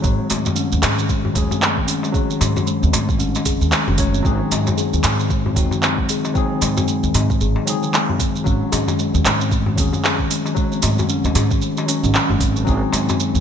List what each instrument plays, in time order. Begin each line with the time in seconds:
0.02 upright bass G#1, tine electric piano F#3, steel tongue drum G#3, kick, shaker
0.19 steel tongue drum C4
0.30 upright bass G#2, steel tongue drum A3, open hi-hat, darbuka ka, darbuka tek, shaker
0.46 steel tongue drum D#3, darbuka ka, darbuka dum, shaker
0.56 steel tongue drum C#4, shaker
0.72 upright bass D#2, steel tongue drum G#3, shaker
0.82 upright bass G#2, steel tongue drum G#4, clap, open hi-hat, darbuka ka, darbuka tek, shaker
0.98 steel tongue drum D#3, shaker
1.09 steel tongue drum G#3, kick, shaker
1.24 steel tongue drum D#3, darbuka dum
1.34 upright bass D#2, tine electric piano F#3 G#4, steel tongue drum G#3, kick, open hi-hat, shaker
1.50 steel tongue drum C4, darbuka dum, shaker
1.61 steel tongue drum A3, clap, shaker
1.77 steel tongue drum D#3, kick
1.87 steel tongue drum C#4, open hi-hat, darbuka ka, shaker
2.03 steel tongue drum G#3, darbuka tek, shaker
2.12 tine electric piano F#3, steel tongue drum G#4, kick, shaker
2.29 steel tongue drum D#3, shaker
2.40 upright bass G#2, steel tongue drum G#3, open hi-hat, darbuka ka, darbuka tek, shaker
2.55 steel tongue drum D#3, darbuka ka, darbuka dum, shaker
2.66 steel tongue drum G#3, shaker
2.82 upright bass D#2, steel tongue drum C4, shaker
2.93 upright bass G#2, steel tongue drum A3, open hi-hat, darbuka ka, darbuka tek, shaker
3.08 steel tongue drum D#3, kick, shaker
3.19 upright bass G#1, steel tongue drum C#4, shaker
3.35 steel tongue drum G#3, darbuka tek, shaker
3.46 upright bass F#1, steel tongue drum G#4, kick, open hi-hat, shaker
3.61 upright bass D#2, steel tongue drum D#3, shaker
3.72 steel tongue drum G#3, clap, shaker
3.87 upright bass F#1, steel tongue drum D#3, darbuka dum
3.98 tine electric piano F#3 A3 C#4 C#5, steel tongue drum G#3, kick, open hi-hat, shaker
4.14 steel tongue drum C4, shaker
4.23 upright bass G#1, tine electric piano F#3 C4 D#4 G#4, steel tongue drum G#3, kick, shaker
4.41 steel tongue drum D#3
4.51 upright bass G#2, steel tongue drum C4, open hi-hat, darbuka ka, darbuka tek, shaker
4.67 steel tongue drum G#3, darbuka ka, darbuka dum, shaker
4.78 steel tongue drum G#4, shaker
4.93 upright bass D#2, steel tongue drum D#3, shaker
5.04 upright bass G#2, steel tongue drum G#3, clap, open hi-hat, darbuka ka, darbuka tek, shaker
5.20 steel tongue drum D#3, shaker
5.30 steel tongue drum G#3, kick, shaker
5.46 steel tongue drum C4, darbuka dum
5.54 upright bass D#2, tine electric piano F#3 C4 D#4, steel tongue drum G#3, kick, open hi-hat, shaker
5.58 tine electric piano F#4
5.71 steel tongue drum D#3, darbuka dum, shaker
5.83 steel tongue drum C4, clap, shaker
5.98 steel tongue drum G#3, kick
6.09 steel tongue drum G#4, open hi-hat, darbuka ka, shaker
6.25 steel tongue drum D#3, darbuka tek, shaker
6.34 tine electric piano F#3 C4 D#4 G#4, steel tongue drum G#3, kick, shaker
6.52 steel tongue drum D#3
6.61 upright bass G#2, steel tongue drum G#3, open hi-hat, darbuka ka, darbuka tek, shaker
6.77 steel tongue drum C4, darbuka ka, darbuka dum, shaker
6.88 steel tongue drum G#3, shaker
7.03 upright bass D#2, steel tongue drum D#3, shaker
7.15 upright bass G#2, steel tongue drum C4, open hi-hat, darbuka ka, darbuka tek, shaker
7.30 steel tongue drum G#3, kick, shaker
7.41 upright bass G#1, steel tongue drum G#4, shaker
7.56 steel tongue drum D#3, darbuka tek
7.66 tine electric piano F#3 C4 D#4, steel tongue drum G#3, open hi-hat, shaker
7.70 tine electric piano G#4
7.82 steel tongue drum D#3, shaker
7.92 steel tongue drum G#3, clap, shaker
8.08 steel tongue drum C4, darbuka dum
8.19 steel tongue drum G#3, kick, open hi-hat, shaker
8.35 steel tongue drum D#3, shaker
8.44 upright bass G#1, tine electric piano F#3, steel tongue drum C#4, kick, shaker
8.61 steel tongue drum G#3
8.72 upright bass G#2, steel tongue drum G#4, open hi-hat, darbuka ka, darbuka tek, shaker
8.88 steel tongue drum D#3, darbuka ka, darbuka dum, shaker
8.99 steel tongue drum G#3, shaker
9.14 upright bass D#2, steel tongue drum D#3, shaker
9.25 upright bass G#2, steel tongue drum G#3, clap, open hi-hat, darbuka ka, darbuka tek, shaker
9.40 steel tongue drum C4, shaker
9.51 steel tongue drum A3, kick, shaker
9.66 steel tongue drum D#3, darbuka dum
9.76 upright bass D#2, tine electric piano F#3, steel tongue drum C#4, kick, open hi-hat, shaker
9.80 tine electric piano G#4
9.93 steel tongue drum G#3, darbuka dum, shaker
10.04 steel tongue drum G#4, clap, shaker
10.19 steel tongue drum D#3, kick
10.30 steel tongue drum G#3, open hi-hat, darbuka ka, shaker
10.46 steel tongue drum D#3, darbuka tek, shaker
10.55 tine electric piano F#3, steel tongue drum G#3, kick, shaker
10.72 steel tongue drum C4, shaker
10.82 upright bass G#2, steel tongue drum A3, open hi-hat, darbuka ka, darbuka tek, shaker
10.98 steel tongue drum D#3, darbuka ka, darbuka dum, shaker
11.09 steel tongue drum C#4, shaker
11.24 upright bass D#2, steel tongue drum G#3, darbuka tek, shaker
11.35 upright bass G#2, steel tongue drum G#4, open hi-hat, darbuka ka, darbuka tek, shaker
11.51 steel tongue drum D#3, kick, shaker
11.62 steel tongue drum G#3, shaker
11.77 steel tongue drum D#3, darbuka tek, shaker
11.86 tine electric piano F#3 C#4, steel tongue drum F#3, open hi-hat, shaker
12.03 upright bass G#1, steel tongue drum C#4, darbuka ka, shaker
12.14 steel tongue drum C#4, clap, shaker
12.29 upright bass F#1, steel tongue drum G#3, darbuka dum
12.40 upright bass G#1, steel tongue drum C4, kick, open hi-hat, shaker
12.55 steel tongue drum F#3, shaker
12.64 upright bass G#1, tine electric piano F#3 C4 D#4, steel tongue drum G#3, kick, shaker
12.69 tine electric piano G#4
12.82 steel tongue drum D#3
12.92 upright bass G#2, steel tongue drum G#3, open hi-hat, darbuka ka, darbuka tek, shaker
13.08 steel tongue drum C4, darbuka ka, darbuka dum, shaker
13.19 steel tongue drum G#3, shaker
13.35 upright bass D#2, steel tongue drum D#3, shaker